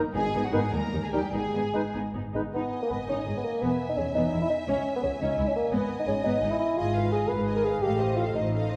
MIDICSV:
0, 0, Header, 1, 12, 480
1, 0, Start_track
1, 0, Key_signature, 5, "minor"
1, 0, Tempo, 399734
1, 168, Time_signature, 6, 3, 24, 8
1, 3054, Tempo, 356083
1, 5934, Tempo, 349243
1, 11543, End_track
2, 0, Start_track
2, 0, Title_t, "Flute"
2, 0, Program_c, 0, 73
2, 171, Note_on_c, 0, 80, 66
2, 533, Note_on_c, 0, 78, 57
2, 551, Note_off_c, 0, 80, 0
2, 640, Note_on_c, 0, 80, 62
2, 658, Note_off_c, 0, 78, 0
2, 875, Note_off_c, 0, 80, 0
2, 892, Note_on_c, 0, 82, 55
2, 971, Note_off_c, 0, 82, 0
2, 1248, Note_on_c, 0, 80, 50
2, 1361, Note_off_c, 0, 80, 0
2, 1366, Note_on_c, 0, 79, 45
2, 1607, Note_on_c, 0, 80, 48
2, 1625, Note_off_c, 0, 79, 0
2, 2342, Note_off_c, 0, 80, 0
2, 11543, End_track
3, 0, Start_track
3, 0, Title_t, "Violin section"
3, 0, Program_c, 1, 48
3, 182, Note_on_c, 1, 80, 72
3, 501, Note_off_c, 1, 80, 0
3, 526, Note_on_c, 1, 78, 61
3, 637, Note_off_c, 1, 78, 0
3, 644, Note_on_c, 1, 80, 66
3, 876, Note_on_c, 1, 82, 68
3, 877, Note_off_c, 1, 80, 0
3, 1236, Note_off_c, 1, 82, 0
3, 1258, Note_on_c, 1, 80, 55
3, 1368, Note_off_c, 1, 80, 0
3, 1372, Note_on_c, 1, 79, 53
3, 1609, Note_off_c, 1, 79, 0
3, 1610, Note_on_c, 1, 80, 53
3, 2329, Note_off_c, 1, 80, 0
3, 3060, Note_on_c, 1, 80, 39
3, 5884, Note_off_c, 1, 80, 0
3, 5944, Note_on_c, 1, 80, 47
3, 8761, Note_off_c, 1, 80, 0
3, 8810, Note_on_c, 1, 80, 51
3, 9035, Note_off_c, 1, 80, 0
3, 9049, Note_on_c, 1, 77, 51
3, 9290, Note_off_c, 1, 77, 0
3, 9293, Note_on_c, 1, 80, 48
3, 9530, Note_on_c, 1, 77, 50
3, 9531, Note_off_c, 1, 80, 0
3, 9763, Note_on_c, 1, 80, 44
3, 9770, Note_off_c, 1, 77, 0
3, 9990, Note_off_c, 1, 80, 0
3, 10011, Note_on_c, 1, 77, 45
3, 10240, Note_on_c, 1, 75, 45
3, 10252, Note_off_c, 1, 77, 0
3, 10468, Note_off_c, 1, 75, 0
3, 10496, Note_on_c, 1, 77, 47
3, 10732, Note_off_c, 1, 77, 0
3, 10737, Note_on_c, 1, 75, 49
3, 10974, Note_off_c, 1, 75, 0
3, 10979, Note_on_c, 1, 77, 50
3, 11217, Note_off_c, 1, 77, 0
3, 11218, Note_on_c, 1, 75, 43
3, 11441, Note_off_c, 1, 75, 0
3, 11456, Note_on_c, 1, 77, 43
3, 11543, Note_off_c, 1, 77, 0
3, 11543, End_track
4, 0, Start_track
4, 0, Title_t, "Violin section"
4, 0, Program_c, 2, 48
4, 177, Note_on_c, 2, 68, 67
4, 498, Note_off_c, 2, 68, 0
4, 526, Note_on_c, 2, 66, 55
4, 639, Note_off_c, 2, 66, 0
4, 649, Note_on_c, 2, 68, 52
4, 874, Note_on_c, 2, 70, 51
4, 875, Note_off_c, 2, 68, 0
4, 1231, Note_on_c, 2, 68, 43
4, 1236, Note_off_c, 2, 70, 0
4, 1355, Note_off_c, 2, 68, 0
4, 1356, Note_on_c, 2, 67, 54
4, 1585, Note_on_c, 2, 68, 51
4, 1596, Note_off_c, 2, 67, 0
4, 2316, Note_off_c, 2, 68, 0
4, 3067, Note_on_c, 2, 75, 41
4, 4463, Note_off_c, 2, 75, 0
4, 4535, Note_on_c, 2, 76, 50
4, 7377, Note_on_c, 2, 75, 55
4, 7383, Note_off_c, 2, 76, 0
4, 8786, Note_off_c, 2, 75, 0
4, 8825, Note_on_c, 2, 75, 56
4, 9043, Note_off_c, 2, 75, 0
4, 9058, Note_on_c, 2, 77, 48
4, 9294, Note_off_c, 2, 77, 0
4, 9306, Note_on_c, 2, 75, 39
4, 9531, Note_on_c, 2, 77, 44
4, 9537, Note_off_c, 2, 75, 0
4, 9763, Note_on_c, 2, 75, 42
4, 9770, Note_off_c, 2, 77, 0
4, 9990, Note_off_c, 2, 75, 0
4, 10002, Note_on_c, 2, 77, 49
4, 10232, Note_off_c, 2, 77, 0
4, 10249, Note_on_c, 2, 77, 52
4, 10473, Note_off_c, 2, 77, 0
4, 10495, Note_on_c, 2, 75, 46
4, 10732, Note_off_c, 2, 75, 0
4, 10745, Note_on_c, 2, 77, 42
4, 10978, Note_off_c, 2, 77, 0
4, 10995, Note_on_c, 2, 75, 44
4, 11225, Note_off_c, 2, 75, 0
4, 11232, Note_on_c, 2, 77, 41
4, 11449, Note_off_c, 2, 77, 0
4, 11480, Note_on_c, 2, 75, 44
4, 11543, Note_off_c, 2, 75, 0
4, 11543, End_track
5, 0, Start_track
5, 0, Title_t, "Cor anglais"
5, 0, Program_c, 3, 69
5, 641, Note_on_c, 3, 71, 54
5, 721, Note_off_c, 3, 71, 0
5, 1358, Note_on_c, 3, 70, 41
5, 1443, Note_off_c, 3, 70, 0
5, 2099, Note_on_c, 3, 71, 40
5, 2183, Note_off_c, 3, 71, 0
5, 2832, Note_on_c, 3, 71, 40
5, 2912, Note_off_c, 3, 71, 0
5, 11543, End_track
6, 0, Start_track
6, 0, Title_t, "Clarinet"
6, 0, Program_c, 4, 71
6, 636, Note_on_c, 4, 63, 53
6, 718, Note_off_c, 4, 63, 0
6, 1368, Note_on_c, 4, 63, 44
6, 1450, Note_off_c, 4, 63, 0
6, 2102, Note_on_c, 4, 63, 44
6, 2185, Note_off_c, 4, 63, 0
6, 2829, Note_on_c, 4, 63, 39
6, 2909, Note_off_c, 4, 63, 0
6, 11543, End_track
7, 0, Start_track
7, 0, Title_t, "Viola section"
7, 0, Program_c, 5, 48
7, 168, Note_on_c, 5, 59, 55
7, 168, Note_on_c, 5, 63, 52
7, 261, Note_off_c, 5, 63, 0
7, 262, Note_off_c, 5, 59, 0
7, 406, Note_on_c, 5, 59, 48
7, 406, Note_on_c, 5, 63, 49
7, 499, Note_off_c, 5, 59, 0
7, 499, Note_off_c, 5, 63, 0
7, 637, Note_on_c, 5, 63, 42
7, 638, Note_on_c, 5, 59, 42
7, 731, Note_off_c, 5, 63, 0
7, 732, Note_off_c, 5, 59, 0
7, 868, Note_on_c, 5, 63, 43
7, 870, Note_on_c, 5, 55, 45
7, 964, Note_off_c, 5, 63, 0
7, 966, Note_off_c, 5, 55, 0
7, 1113, Note_on_c, 5, 55, 40
7, 1116, Note_on_c, 5, 63, 44
7, 1209, Note_off_c, 5, 55, 0
7, 1212, Note_off_c, 5, 63, 0
7, 1357, Note_on_c, 5, 55, 38
7, 1362, Note_on_c, 5, 63, 38
7, 1453, Note_off_c, 5, 55, 0
7, 1458, Note_off_c, 5, 63, 0
7, 1606, Note_on_c, 5, 59, 43
7, 1606, Note_on_c, 5, 63, 38
7, 1702, Note_off_c, 5, 59, 0
7, 1702, Note_off_c, 5, 63, 0
7, 1847, Note_on_c, 5, 63, 37
7, 1850, Note_on_c, 5, 59, 36
7, 1943, Note_off_c, 5, 63, 0
7, 1946, Note_off_c, 5, 59, 0
7, 2096, Note_on_c, 5, 63, 34
7, 2097, Note_on_c, 5, 59, 36
7, 2193, Note_off_c, 5, 59, 0
7, 2193, Note_off_c, 5, 63, 0
7, 2338, Note_on_c, 5, 59, 34
7, 2340, Note_on_c, 5, 63, 32
7, 2434, Note_off_c, 5, 59, 0
7, 2436, Note_off_c, 5, 63, 0
7, 2572, Note_on_c, 5, 59, 34
7, 2573, Note_on_c, 5, 63, 34
7, 2668, Note_off_c, 5, 59, 0
7, 2669, Note_off_c, 5, 63, 0
7, 2817, Note_on_c, 5, 63, 34
7, 2822, Note_on_c, 5, 59, 34
7, 2910, Note_off_c, 5, 63, 0
7, 2914, Note_off_c, 5, 59, 0
7, 3055, Note_on_c, 5, 63, 52
7, 3282, Note_off_c, 5, 63, 0
7, 3541, Note_on_c, 5, 71, 37
7, 3639, Note_off_c, 5, 71, 0
7, 3781, Note_on_c, 5, 63, 45
7, 4009, Note_off_c, 5, 63, 0
7, 4021, Note_on_c, 5, 68, 39
7, 4119, Note_off_c, 5, 68, 0
7, 4502, Note_on_c, 5, 59, 50
7, 4727, Note_off_c, 5, 59, 0
7, 4987, Note_on_c, 5, 68, 38
7, 5081, Note_off_c, 5, 68, 0
7, 5224, Note_on_c, 5, 59, 43
7, 5443, Note_off_c, 5, 59, 0
7, 5457, Note_on_c, 5, 64, 38
7, 5553, Note_off_c, 5, 64, 0
7, 5935, Note_on_c, 5, 61, 59
7, 6160, Note_off_c, 5, 61, 0
7, 6415, Note_on_c, 5, 68, 36
7, 6511, Note_off_c, 5, 68, 0
7, 6664, Note_on_c, 5, 61, 59
7, 6882, Note_off_c, 5, 61, 0
7, 6903, Note_on_c, 5, 64, 45
7, 6996, Note_off_c, 5, 64, 0
7, 7381, Note_on_c, 5, 59, 61
7, 7598, Note_off_c, 5, 59, 0
7, 7850, Note_on_c, 5, 68, 38
7, 7946, Note_off_c, 5, 68, 0
7, 8091, Note_on_c, 5, 59, 58
7, 8313, Note_off_c, 5, 59, 0
7, 8344, Note_on_c, 5, 63, 55
7, 8437, Note_off_c, 5, 63, 0
7, 8822, Note_on_c, 5, 68, 49
7, 9041, Note_off_c, 5, 68, 0
7, 9061, Note_on_c, 5, 71, 47
7, 9290, Note_on_c, 5, 68, 42
7, 9296, Note_off_c, 5, 71, 0
7, 9530, Note_off_c, 5, 68, 0
7, 9530, Note_on_c, 5, 71, 45
7, 9767, Note_on_c, 5, 68, 43
7, 9770, Note_off_c, 5, 71, 0
7, 9993, Note_off_c, 5, 68, 0
7, 10008, Note_on_c, 5, 71, 45
7, 10251, Note_off_c, 5, 71, 0
7, 10254, Note_on_c, 5, 69, 53
7, 10476, Note_off_c, 5, 69, 0
7, 10489, Note_on_c, 5, 72, 44
7, 10725, Note_on_c, 5, 69, 45
7, 10729, Note_off_c, 5, 72, 0
7, 10968, Note_off_c, 5, 69, 0
7, 10971, Note_on_c, 5, 72, 41
7, 11213, Note_off_c, 5, 72, 0
7, 11219, Note_on_c, 5, 69, 42
7, 11442, Note_off_c, 5, 69, 0
7, 11455, Note_on_c, 5, 72, 45
7, 11543, Note_off_c, 5, 72, 0
7, 11543, End_track
8, 0, Start_track
8, 0, Title_t, "Bassoon"
8, 0, Program_c, 6, 70
8, 634, Note_on_c, 6, 51, 54
8, 717, Note_off_c, 6, 51, 0
8, 1356, Note_on_c, 6, 55, 40
8, 1442, Note_off_c, 6, 55, 0
8, 2088, Note_on_c, 6, 56, 41
8, 2176, Note_off_c, 6, 56, 0
8, 2818, Note_on_c, 6, 56, 39
8, 2902, Note_off_c, 6, 56, 0
8, 3050, Note_on_c, 6, 59, 55
8, 3394, Note_off_c, 6, 59, 0
8, 3432, Note_on_c, 6, 58, 50
8, 3485, Note_off_c, 6, 58, 0
8, 3546, Note_on_c, 6, 59, 53
8, 3655, Note_off_c, 6, 59, 0
8, 3788, Note_on_c, 6, 61, 62
8, 3951, Note_off_c, 6, 61, 0
8, 4168, Note_on_c, 6, 59, 51
8, 4272, Note_on_c, 6, 58, 54
8, 4292, Note_off_c, 6, 59, 0
8, 4505, Note_on_c, 6, 59, 63
8, 4525, Note_off_c, 6, 58, 0
8, 4864, Note_off_c, 6, 59, 0
8, 4876, Note_on_c, 6, 63, 60
8, 4983, Note_on_c, 6, 61, 53
8, 5004, Note_off_c, 6, 63, 0
8, 5211, Note_off_c, 6, 61, 0
8, 5219, Note_on_c, 6, 63, 69
8, 5568, Note_off_c, 6, 63, 0
8, 5579, Note_on_c, 6, 64, 61
8, 5684, Note_off_c, 6, 64, 0
8, 5692, Note_on_c, 6, 63, 60
8, 5800, Note_off_c, 6, 63, 0
8, 5944, Note_on_c, 6, 61, 65
8, 6295, Note_off_c, 6, 61, 0
8, 6321, Note_on_c, 6, 59, 57
8, 6369, Note_off_c, 6, 59, 0
8, 6426, Note_on_c, 6, 61, 60
8, 6531, Note_off_c, 6, 61, 0
8, 6684, Note_on_c, 6, 63, 65
8, 7036, Note_on_c, 6, 61, 62
8, 7056, Note_off_c, 6, 63, 0
8, 7136, Note_off_c, 6, 61, 0
8, 7144, Note_on_c, 6, 58, 61
8, 7388, Note_on_c, 6, 59, 63
8, 7409, Note_off_c, 6, 58, 0
8, 7733, Note_off_c, 6, 59, 0
8, 7742, Note_on_c, 6, 63, 65
8, 7844, Note_off_c, 6, 63, 0
8, 7852, Note_on_c, 6, 61, 65
8, 8071, Note_off_c, 6, 61, 0
8, 8080, Note_on_c, 6, 63, 71
8, 8447, Note_on_c, 6, 64, 63
8, 8468, Note_off_c, 6, 63, 0
8, 8552, Note_off_c, 6, 64, 0
8, 8561, Note_on_c, 6, 64, 70
8, 8806, Note_on_c, 6, 65, 63
8, 8827, Note_off_c, 6, 64, 0
8, 9283, Note_off_c, 6, 65, 0
8, 9291, Note_on_c, 6, 68, 72
8, 9525, Note_on_c, 6, 71, 76
8, 9546, Note_off_c, 6, 68, 0
8, 9888, Note_off_c, 6, 71, 0
8, 9899, Note_on_c, 6, 70, 73
8, 10009, Note_on_c, 6, 68, 70
8, 10029, Note_off_c, 6, 70, 0
8, 10249, Note_on_c, 6, 67, 67
8, 10270, Note_off_c, 6, 68, 0
8, 10718, Note_off_c, 6, 67, 0
8, 10726, Note_on_c, 6, 65, 60
8, 10835, Note_off_c, 6, 65, 0
8, 10979, Note_on_c, 6, 63, 67
8, 11450, Note_off_c, 6, 63, 0
8, 11543, End_track
9, 0, Start_track
9, 0, Title_t, "French horn section"
9, 0, Program_c, 7, 60
9, 176, Note_on_c, 7, 56, 69
9, 497, Note_off_c, 7, 56, 0
9, 523, Note_on_c, 7, 54, 55
9, 636, Note_off_c, 7, 54, 0
9, 642, Note_on_c, 7, 56, 55
9, 871, Note_off_c, 7, 56, 0
9, 886, Note_on_c, 7, 58, 61
9, 1233, Note_on_c, 7, 56, 46
9, 1241, Note_off_c, 7, 58, 0
9, 1353, Note_off_c, 7, 56, 0
9, 1366, Note_on_c, 7, 55, 43
9, 1602, Note_off_c, 7, 55, 0
9, 1608, Note_on_c, 7, 56, 54
9, 2328, Note_off_c, 7, 56, 0
9, 11543, End_track
10, 0, Start_track
10, 0, Title_t, "Cello section"
10, 0, Program_c, 8, 48
10, 176, Note_on_c, 8, 44, 55
10, 268, Note_off_c, 8, 44, 0
10, 409, Note_on_c, 8, 44, 51
10, 501, Note_off_c, 8, 44, 0
10, 639, Note_on_c, 8, 44, 53
10, 733, Note_off_c, 8, 44, 0
10, 879, Note_on_c, 8, 39, 53
10, 974, Note_off_c, 8, 39, 0
10, 1121, Note_on_c, 8, 39, 47
10, 1216, Note_off_c, 8, 39, 0
10, 1358, Note_on_c, 8, 39, 41
10, 1454, Note_off_c, 8, 39, 0
10, 1606, Note_on_c, 8, 44, 42
10, 1702, Note_off_c, 8, 44, 0
10, 1853, Note_on_c, 8, 44, 37
10, 1949, Note_off_c, 8, 44, 0
10, 2101, Note_on_c, 8, 44, 40
10, 2197, Note_off_c, 8, 44, 0
10, 2339, Note_on_c, 8, 44, 42
10, 2435, Note_off_c, 8, 44, 0
10, 2578, Note_on_c, 8, 44, 40
10, 2674, Note_off_c, 8, 44, 0
10, 2819, Note_on_c, 8, 44, 35
10, 2912, Note_off_c, 8, 44, 0
10, 3053, Note_on_c, 8, 44, 50
10, 3151, Note_off_c, 8, 44, 0
10, 3545, Note_on_c, 8, 44, 37
10, 3642, Note_off_c, 8, 44, 0
10, 3792, Note_on_c, 8, 44, 51
10, 3888, Note_off_c, 8, 44, 0
10, 4030, Note_on_c, 8, 44, 36
10, 4127, Note_off_c, 8, 44, 0
10, 4515, Note_on_c, 8, 40, 55
10, 4609, Note_off_c, 8, 40, 0
10, 4998, Note_on_c, 8, 40, 38
10, 5090, Note_off_c, 8, 40, 0
10, 5225, Note_on_c, 8, 40, 55
10, 5319, Note_off_c, 8, 40, 0
10, 5467, Note_on_c, 8, 40, 41
10, 5560, Note_off_c, 8, 40, 0
10, 5932, Note_on_c, 8, 37, 58
10, 6030, Note_off_c, 8, 37, 0
10, 6415, Note_on_c, 8, 37, 42
10, 6511, Note_off_c, 8, 37, 0
10, 6650, Note_on_c, 8, 37, 61
10, 6747, Note_off_c, 8, 37, 0
10, 6893, Note_on_c, 8, 37, 45
10, 6989, Note_off_c, 8, 37, 0
10, 7363, Note_on_c, 8, 44, 60
10, 7460, Note_off_c, 8, 44, 0
10, 7845, Note_on_c, 8, 44, 45
10, 7942, Note_off_c, 8, 44, 0
10, 8082, Note_on_c, 8, 44, 59
10, 8180, Note_off_c, 8, 44, 0
10, 8322, Note_on_c, 8, 44, 46
10, 8419, Note_off_c, 8, 44, 0
10, 8805, Note_on_c, 8, 44, 59
10, 9442, Note_off_c, 8, 44, 0
10, 9532, Note_on_c, 8, 44, 58
10, 10168, Note_off_c, 8, 44, 0
10, 10260, Note_on_c, 8, 45, 54
10, 10889, Note_off_c, 8, 45, 0
10, 10974, Note_on_c, 8, 45, 54
10, 11543, Note_off_c, 8, 45, 0
10, 11543, End_track
11, 0, Start_track
11, 0, Title_t, "Timpani"
11, 0, Program_c, 10, 47
11, 178, Note_on_c, 10, 44, 60
11, 830, Note_off_c, 10, 44, 0
11, 11543, End_track
12, 0, Start_track
12, 0, Title_t, "Double bass section"
12, 0, Program_c, 11, 48
12, 176, Note_on_c, 11, 32, 54
12, 268, Note_off_c, 11, 32, 0
12, 409, Note_on_c, 11, 32, 54
12, 501, Note_off_c, 11, 32, 0
12, 645, Note_on_c, 11, 32, 51
12, 738, Note_off_c, 11, 32, 0
12, 876, Note_on_c, 11, 39, 51
12, 972, Note_off_c, 11, 39, 0
12, 1117, Note_on_c, 11, 39, 50
12, 1213, Note_off_c, 11, 39, 0
12, 1359, Note_on_c, 11, 39, 43
12, 1455, Note_off_c, 11, 39, 0
12, 1603, Note_on_c, 11, 32, 45
12, 1699, Note_off_c, 11, 32, 0
12, 1855, Note_on_c, 11, 32, 43
12, 1951, Note_off_c, 11, 32, 0
12, 2095, Note_on_c, 11, 32, 39
12, 2191, Note_off_c, 11, 32, 0
12, 2337, Note_on_c, 11, 32, 43
12, 2434, Note_off_c, 11, 32, 0
12, 2581, Note_on_c, 11, 32, 39
12, 2678, Note_off_c, 11, 32, 0
12, 2819, Note_on_c, 11, 32, 39
12, 2912, Note_off_c, 11, 32, 0
12, 3050, Note_on_c, 11, 32, 47
12, 3148, Note_off_c, 11, 32, 0
12, 3552, Note_on_c, 11, 32, 40
12, 3648, Note_off_c, 11, 32, 0
12, 3799, Note_on_c, 11, 32, 49
12, 3894, Note_off_c, 11, 32, 0
12, 4043, Note_on_c, 11, 32, 38
12, 4137, Note_off_c, 11, 32, 0
12, 4524, Note_on_c, 11, 28, 48
12, 4616, Note_off_c, 11, 28, 0
12, 4991, Note_on_c, 11, 28, 42
12, 5084, Note_off_c, 11, 28, 0
12, 5226, Note_on_c, 11, 28, 50
12, 5319, Note_off_c, 11, 28, 0
12, 5463, Note_on_c, 11, 28, 39
12, 5557, Note_off_c, 11, 28, 0
12, 5947, Note_on_c, 11, 37, 52
12, 6042, Note_off_c, 11, 37, 0
12, 6429, Note_on_c, 11, 37, 43
12, 6522, Note_off_c, 11, 37, 0
12, 6665, Note_on_c, 11, 37, 57
12, 6758, Note_off_c, 11, 37, 0
12, 6903, Note_on_c, 11, 37, 44
12, 6996, Note_off_c, 11, 37, 0
12, 7373, Note_on_c, 11, 32, 55
12, 7468, Note_off_c, 11, 32, 0
12, 7853, Note_on_c, 11, 32, 41
12, 7948, Note_off_c, 11, 32, 0
12, 8081, Note_on_c, 11, 32, 63
12, 8178, Note_off_c, 11, 32, 0
12, 8333, Note_on_c, 11, 32, 50
12, 8428, Note_off_c, 11, 32, 0
12, 8817, Note_on_c, 11, 32, 58
12, 9449, Note_off_c, 11, 32, 0
12, 9536, Note_on_c, 11, 32, 52
12, 10170, Note_off_c, 11, 32, 0
12, 10256, Note_on_c, 11, 33, 60
12, 10887, Note_off_c, 11, 33, 0
12, 10969, Note_on_c, 11, 33, 51
12, 11543, Note_off_c, 11, 33, 0
12, 11543, End_track
0, 0, End_of_file